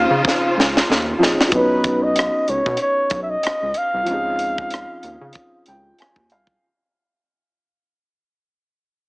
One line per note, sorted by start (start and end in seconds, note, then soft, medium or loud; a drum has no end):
0.00 1.49 C#3 medium
0.00 1.14 F3 medium
0.00 1.15 C4 medium
0.00 1.16 C#4 medium
0.00 1.18 D#4 medium
0.00 1.48 D#4 medium
0.00 1.50 F4 medium
0.00 1.19 G#4 medium
0.00 1.50 C5 medium
0.00 0.88 F5 loud
0.11 0.22 C#3 loud
0.25 kick medium
0.25 snare medium
0.57 0.82 C#2 medium
0.57 snare medium
0.77 snare medium
0.89 1.14 D#2 loud
0.89 snare medium
1.18 1.34 A#1 medium
1.18 1.51 F3 medium
1.18 1.52 C4 medium
1.18 1.51 C#4 medium
1.18 1.53 D#4 medium
1.23 1.53 G#4 medium
1.23 snare medium
1.41 snare medium
1.48 4.01 F#3 medium
1.48 4.02 B3 medium
1.48 closed hi-hat medium
1.52 2.29 B1 medium
1.52 4.04 C#4 medium
1.52 4.05 D#4 medium
1.52 2.05 B4 medium
1.52 kick loud
1.58 4.06 B4 medium
1.84 kick medium
1.84 closed hi-hat medium
2.03 2.51 D#5 medium
2.16 cross-stick loud
2.16 closed hi-hat medium
2.48 2.62 C#2 medium
2.48 2.80 C#5 medium
2.48 closed hi-hat medium
2.66 2.77 B2 medium
2.66 kick medium
2.77 closed hi-hat medium
2.82 3.19 C#5 medium
3.10 3.36 B1 medium
3.10 kick medium
3.10 closed hi-hat medium
3.23 3.32 E5 medium
3.30 3.79 D#5 medium
3.43 3.51 C#2 soft
3.43 cross-stick medium
3.43 closed hi-hat medium
3.62 3.73 C#2 medium
3.74 5.68 F5 loud
3.74 closed hi-hat medium
3.94 4.05 C2 medium
4.03 6.57 F3 medium
4.03 6.58 C4 medium
4.03 closed hi-hat medium
4.08 4.85 C#2 medium
4.08 6.59 C#4 medium
4.08 6.60 D#4 medium
4.13 6.62 G#4 medium
4.39 closed hi-hat medium
4.58 kick medium
4.71 cross-stick medium
4.71 closed hi-hat medium
5.03 5.17 D#2 medium
5.03 closed hi-hat medium
5.21 5.32 C#3 medium
5.33 kick medium
5.33 closed hi-hat medium
5.66 5.93 C#2 medium
5.66 5.97 G5 medium
5.66 closed hi-hat medium
5.99 6.29 G#5 medium
5.99 cross-stick medium
5.99 closed hi-hat medium
6.16 6.34 D#2 medium
6.16 kick medium
6.30 6.57 C2 medium
6.30 6.61 F5 medium
6.30 closed hi-hat medium
6.47 kick medium